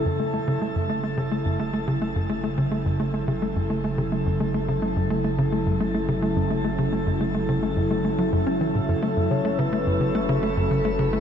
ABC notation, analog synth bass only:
X:1
M:4/4
L:1/16
Q:1/4=107
K:F#m
V:1 name="Analog synth bass"
F,, A, A, C, A, F,, A, A, C, A, F,, A, A, C, A, F,, | A, A, C, A, F,, A, A, C, A, F,, A, A, C, A, F,, A, | A, C, A, F,, A, A, C, A, F,, A, A, C, A, F,, A, A, | C, A, F,, A, A, C, A, F,, A, A, F, F,, C E, A,, F,, |
A, F,, C, A, C, A, F,, C, A, C, A, F,, C, A, C, A, |]